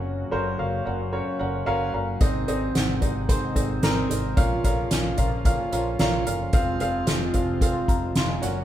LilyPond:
<<
  \new Staff \with { instrumentName = "Upright piano" } { \time 4/4 \key f \phrygian \tempo 4 = 111 << { r2 r8 ges''8 aes''8 bes''8 | aes,4. r2 r8 | bes,4. r2 r8 | r2 r8 <f'' bes''>8 <f'' c'''>16 <ees'' aes''>8 r16 | } \\ { <des' ges' bes' ges''>8 <des' ges' bes' c''>8 <des' ges' bes' f''>8 <des' ges' bes' ges''>8 <des' ges' bes' des''>8 <des' ges' bes'>8 <des' ges' bes' f''>8 <des' ges' bes' f''>8 | <c' ees' aes' ees''>8 <c' ees' aes' ees''>8 <c' ees' aes' ges''>8 <c' ees' aes' ees''>8 <c' ees' aes' c''>8 <c' ees' aes' ees''>8 <c' ees' aes' bes'>8 <c' ees' aes' ees''>8 | <des' f' bes' f''>8 <des' f' bes' f''>8 <des' f' bes' aes''>8 <des' f' bes' f''>8 <des' f' bes' f''>8 <des' f' bes' f''>8 <des' f' bes' f''>8 <des' f' bes' f''>8 | <c' f' aes' f''>8 <c' f' aes' f''>8 <c' f' aes' f''>8 <c' f' aes' f''>8 <c' f' aes' f''>8 r4 <des' ges' bes' ges''>8 | } >> }
  \new Staff \with { instrumentName = "Analog synth pad" } { \clef bass \time 4/4 \key f \phrygian <des ges bes ges'>1 | <c ees aes ees'>1 | <des f bes f'>1 | <c f aes f'>2.~ <c f aes f'>8 <des ges bes ges'>8 | }
  \new Staff \with { instrumentName = "Fingered electric bass" } { \clef bass \time 4/4 \key f \phrygian ges,,8 ges,,8 ges,,8 ges,,8. r16 ges,,8 ges,,8 ges,,8 | aes,,8 aes,,8 aes,,8 aes,,8. r16 aes,,8 aes,,8 aes,,8 | bes,,8 bes,,8 bes,,8 bes,,8. r16 bes,,8 bes,,8 ges,,8 | f,,8 f,,8 f,,8 f,,8. r16 f,,8 f,,8 ges,,8 | }
  \new DrumStaff \with { instrumentName = "Drums" } \drummode { \time 4/4 r4 r4 r4 r4 | <hh bd>8 hh8 <hh sn>8 <hh bd>8 <hh bd>8 <hh bd>8 <hh sn>8 <hh sn>8 | <hh bd>8 <hh bd>8 <hh sn>8 <hh bd>8 <hh bd>8 hh8 <hh sn>8 hh8 | <hh bd>8 hh8 <hh sn>8 <hh bd>8 <hh bd>8 <hh bd>8 <hh sn>8 <hh sn>8 | }
>>